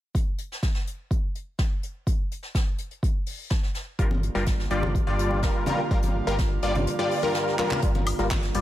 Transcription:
0.15 kick loud
0.15 closed hi-hat medium
0.38 closed hi-hat medium
0.52 snare soft
0.62 kick loud
0.62 snare loud
0.62 closed hi-hat medium
0.74 snare soft
0.87 closed hi-hat medium
1.11 kick loud
1.11 closed hi-hat medium
1.35 closed hi-hat medium
1.59 kick loud
1.59 snare loud
1.59 closed hi-hat medium
1.83 closed hi-hat medium
2.07 kick loud
2.07 closed hi-hat medium
2.31 closed hi-hat medium
2.43 snare soft
2.55 kick loud
2.55 snare loud
2.55 closed hi-hat medium
2.78 closed hi-hat medium
2.91 closed hi-hat soft
3.03 kick loud
3.03 closed hi-hat medium
3.26 open hi-hat medium
3.50 kick loud
3.50 snare loud
3.50 closed hi-hat medium
3.63 snare soft
3.74 snare soft
3.74 closed hi-hat medium
3.99 4.30 G1 loud
3.99 4.07 G2 medium
3.99 7.79 D3 medium
3.99 4.07 G3 medium
3.99 7.79 G3 medium
3.99 7.79 A#3 medium
3.99 4.07 F4 medium
3.99 7.79 F4 medium
3.99 4.07 A#4 medium
3.99 kick loud
3.99 closed hi-hat medium
4.11 high conga medium
4.23 closed hi-hat medium
4.35 4.66 G1 loud
4.35 4.43 G2 medium
4.35 4.43 G3 medium
4.35 4.43 F4 medium
4.35 4.43 A#4 loud
4.35 snare medium
4.46 kick loud
4.46 snare loud
4.46 closed hi-hat medium
4.46 high conga medium
4.60 snare medium
4.70 5.02 G1 medium
4.70 4.84 G2 medium
4.70 4.84 G3 medium
4.70 4.84 F4 medium
4.70 4.84 D5 loud
4.70 closed hi-hat medium
4.83 high conga medium
4.83 low conga medium
4.95 kick loud
4.95 closed hi-hat medium
5.07 5.44 G1 medium
5.07 5.40 G2 medium
5.07 5.40 G3 medium
5.07 5.40 F4 medium
5.07 5.40 D5 loud
5.19 closed hi-hat medium
5.31 high conga medium
5.42 5.52 F1 medium
5.42 5.64 G2 medium
5.42 5.64 G3 medium
5.42 5.64 F4 medium
5.42 5.64 A#4 medium
5.42 kick loud
5.42 snare loud
5.42 closed hi-hat medium
5.66 5.80 G2 medium
5.66 5.80 G3 medium
5.66 5.80 F4 medium
5.66 5.80 A#4 loud
5.66 closed hi-hat medium
5.66 high conga medium
5.66 low conga medium
5.91 6.22 G1 loud
5.91 5.99 G2 medium
5.91 5.99 G3 medium
5.91 5.99 F4 medium
5.91 5.99 A#4 medium
5.91 kick loud
5.91 closed hi-hat medium
6.02 closed hi-hat medium
6.02 high conga medium
6.27 6.58 G1 loud
6.27 6.35 G2 medium
6.27 6.35 G3 medium
6.27 6.35 F4 medium
6.27 6.35 A#4 loud
6.27 closed hi-hat medium
6.38 kick loud
6.38 snare loud
6.38 closed hi-hat medium
6.38 high conga medium
6.62 6.87 G1 medium
6.62 6.76 G2 medium
6.62 6.76 G3 medium
6.62 6.76 F4 medium
6.62 6.76 D5 loud
6.62 closed hi-hat medium
6.75 closed hi-hat soft
6.75 high conga medium
6.75 low conga medium
6.87 closed hi-hat medium
6.99 7.21 G2 medium
6.99 7.21 G3 medium
6.99 7.20 F4 medium
6.99 7.21 D5 loud
7.11 open hi-hat medium
7.23 7.56 G2 medium
7.23 7.56 G3 medium
7.23 7.56 F4 medium
7.23 7.56 A#4 medium
7.23 high conga medium
7.34 snare medium
7.34 closed hi-hat medium
7.47 snare soft
7.59 7.80 G2 medium
7.59 7.80 G3 medium
7.59 7.80 F4 medium
7.59 7.80 A#4 medium
7.59 clap medium
7.59 closed hi-hat medium
7.59 high conga medium
7.71 clap medium
7.71 low conga medium
7.82 8.14 G1 loud
7.82 7.91 G2 medium
7.82 8.61 D3 medium
7.82 7.91 G3 medium
7.82 8.61 G3 medium
7.82 8.61 A#3 medium
7.82 8.61 F4 medium
7.82 7.91 F4 medium
7.82 7.91 A#4 medium
7.82 kick loud
7.82 closed hi-hat medium
7.95 closed hi-hat soft
7.95 high conga medium
8.07 closed hi-hat medium
8.07 open hi-hat loud
8.07 high woodblock medium
8.19 8.50 G1 loud
8.19 8.27 G2 medium
8.19 8.27 G3 medium
8.19 8.27 F4 medium
8.19 8.27 A#4 loud
8.19 snare medium
8.19 closed hi-hat soft
8.30 kick loud
8.30 snare loud
8.30 clap loud
8.30 closed hi-hat medium
8.30 high conga medium
8.43 snare soft
8.43 closed hi-hat soft
8.55 8.61 G1 medium
8.55 8.61 G2 loud
8.55 8.61 G3 medium
8.55 8.61 F4 medium
8.55 8.61 D5 loud
8.55 closed hi-hat medium
8.55 open hi-hat medium

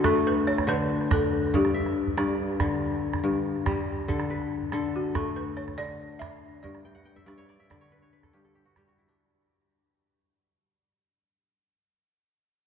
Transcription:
0.00 0.66 D3 medium
0.00 2.04 A3 medium
0.00 0.93 A4 medium
0.00 0.41 B4 medium
0.04 0.14 A4 medium
0.04 calabash thump medium
0.04 calabash click medium
0.27 0.48 B4 medium
0.47 0.69 C#5 medium
0.58 calabash thump medium
0.58 calabash click medium
0.67 1.59 D3 medium
0.67 1.12 B4 medium
1.01 calabash click soft
1.11 2.79 D4 medium
1.11 1.56 A4 medium
1.11 calabash thump medium
1.11 calabash click medium
1.54 2.16 G2 medium
1.54 2.14 G4 medium
1.54 2.17 D5 medium
1.54 calabash thump medium
1.65 calabash click medium
1.74 2.78 E5 medium
1.86 calabash click soft
2.07 calabash thump medium
2.17 3.22 G2 medium
2.17 3.28 D5 medium
2.17 calabash click medium
2.60 4.07 D3 medium
2.60 calabash thump medium
2.60 calabash click medium
3.14 calabash thump medium
3.14 calabash click medium
3.24 4.14 G2 medium
3.56 calabash click soft
3.66 4.14 G3 medium
3.66 calabash thump medium
3.66 calabash click medium
4.08 4.72 D3 medium
4.08 4.73 A4 medium
4.08 calabash thump medium
4.20 calabash click soft
4.30 5.53 B4 medium
4.41 calabash click soft
4.62 calabash thump soft
4.72 5.77 D3 medium
4.72 6.05 A4 medium
4.72 calabash click medium
4.96 5.17 F#4 medium
5.15 7.15 A3 medium
5.15 5.35 A4 medium
5.15 calabash thump medium
5.15 calabash click medium
5.36 5.58 B4 medium
5.57 5.79 C#5 medium
5.68 calabash thump soft
5.68 calabash click medium
5.78 6.69 D3 medium
5.78 6.22 D5 medium
6.19 7.44 D4 medium
6.19 6.64 E5 loud
6.19 calabash thump medium
6.19 calabash click medium
6.63 7.25 G2 medium
6.63 7.23 D5 medium
6.63 calabash thump medium
6.63 calabash click soft
6.75 calabash click soft
6.85 7.05 G5 medium
6.85 calabash click soft
6.95 7.32 F#5 medium
6.95 calabash click soft
7.05 7.99 G5 medium
7.16 7.59 E5 medium
7.16 calabash thump soft
7.16 calabash click soft
7.26 8.32 G2 medium
7.26 7.49 D5 medium
7.26 calabash click medium
7.38 7.76 C#5 medium
7.38 calabash click soft
7.49 7.70 D5 medium
7.49 calabash click soft
7.60 8.63 E5 medium
7.70 9.25 D3 medium
7.70 8.08 D5 medium
7.70 calabash thump medium
7.70 calabash click medium
7.81 8.02 C#5 medium
7.92 8.12 B4 medium
8.02 9.15 C#5 medium
8.13 9.36 B4 medium
8.13 calabash click soft
8.23 8.44 A4 medium
8.23 calabash thump medium
8.23 calabash click soft
8.33 9.25 G2 medium
8.33 8.55 G4 medium
8.45 9.76 A4 medium
8.45 calabash click soft
8.55 8.77 G4 medium
8.66 8.87 F#4 medium
8.76 9.25 G3 medium
8.76 10.18 G4 medium
8.76 calabash thump medium
8.76 calabash click medium
8.87 10.34 F#4 medium
8.87 calabash click soft
8.98 10.55 E4 medium
9.08 10.77 D4 medium
9.08 calabash click soft

